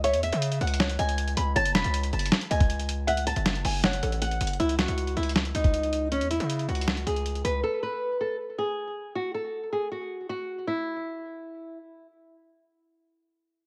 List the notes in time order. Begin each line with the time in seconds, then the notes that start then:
Already playing: C#2
0.04 C#5 E5, closed hi-hat
0.14 E2, closed hi-hat
0.23 E5, closed hi-hat
0.32 C#3, closed hi-hat
0.42 closed hi-hat
0.52 closed hi-hat
0.61 C#2 F#5, closed hi-hat
0.67 closed hi-hat
0.74 closed hi-hat
0.80 C#5, snare, closed hi-hat
0.89 closed hi-hat
0.99 C#2 D#5 G#5, closed hi-hat
1.09 closed hi-hat
1.18 closed hi-hat
1.28 closed hi-hat
1.37 C#2 B5, closed hi-hat
1.56 F#1 C#5 A5, closed hi-hat
1.65 closed hi-hat
1.75 E1 B5, snare, closed hi-hat
1.84 C#2, closed hi-hat
1.94 closed hi-hat
2.03 closed hi-hat
2.13 F#1 A5, closed hi-hat
2.19 closed hi-hat
2.26 closed hi-hat
2.32 snare, closed hi-hat
2.41 closed hi-hat
2.51 C#2 D#5 G#5, closed hi-hat
2.60 kick, closed hi-hat
2.70 closed hi-hat
2.79 closed hi-hat
2.89 closed hi-hat
3.07 E5 F#5, closed hi-hat
3.17 closed hi-hat
3.27 A5, closed hi-hat
3.36 F#1, closed hi-hat
3.46 snare, closed hi-hat
3.55 closed hi-hat
3.65 F#1 G#5, open hi-hat
3.84 C#5 F#5, snare, closed hi-hat
3.93 closed hi-hat
4.03 A1 A4, closed hi-hat
4.12 closed hi-hat
4.22 F#5, closed hi-hat
4.31 closed hi-hat
4.41 F#1, closed hi-hat
4.47 closed hi-hat
4.53 closed hi-hat
4.60 C#2 E4, closed hi-hat
4.69 closed hi-hat
4.79 F#4, snare, closed hi-hat
4.88 C#2, closed hi-hat
4.98 closed hi-hat
5.07 closed hi-hat
5.17 C#2 E4, closed hi-hat
5.23 closed hi-hat
5.29 closed hi-hat
5.36 snare, closed hi-hat
5.45 closed hi-hat
5.55 C#2 D#4, closed hi-hat
5.64 kick, closed hi-hat
5.74 closed hi-hat
5.83 closed hi-hat
5.93 closed hi-hat
6.12 C#4, closed hi-hat
6.21 E2, closed hi-hat
6.31 E4, closed hi-hat
6.40 C#3, closed hi-hat
6.50 closed hi-hat
6.59 closed hi-hat
6.68 C#2 F#4, closed hi-hat
6.75 closed hi-hat
6.81 closed hi-hat
6.88 snare, closed hi-hat
6.97 closed hi-hat
7.07 C#2 G#4, closed hi-hat
7.16 closed hi-hat
7.26 closed hi-hat
7.35 closed hi-hat
7.45 C#2 B4, closed hi-hat
7.63 A4
7.83 B4
8.21 A4
8.58 G#4
9.15 F#4
9.34 A4
9.73 G#4
9.92 F#4
10.29 F#4
10.67 E4